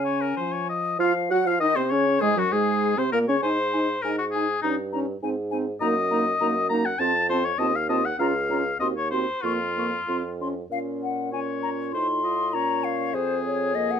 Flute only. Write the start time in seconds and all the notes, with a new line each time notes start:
Already playing: G#5
1.01 F5
1.31 F#5
1.47 F5
1.62 D#5
1.77 C5
1.92 C#5
2.21 G#4
2.37 F#4
2.55 G#4
2.97 C5
3.13 A#4
3.28 C#5
3.42 G#5
3.73 G#5
4.05 G#5
4.35 G#5
4.63 A#5
4.93 A#5
5.23 G#5
5.51 G#5
5.81 A#5
6.11 A#5
6.41 A#5
6.71 A#5
7.01 A5
7.31 A5
7.60 A5
7.90 A5
8.20 A#5
8.51 A#5
8.81 C6
9.12 C6
9.45 C#6
9.79 C#6
10.10 C6
10.42 C6
10.72 F5
11.03 F#5
11.33 G#5
11.63 A#5
11.93 C6
12.53 A#5
12.84 F5
13.14 C5
13.46 C#5
13.75 D#5
13.91 F#5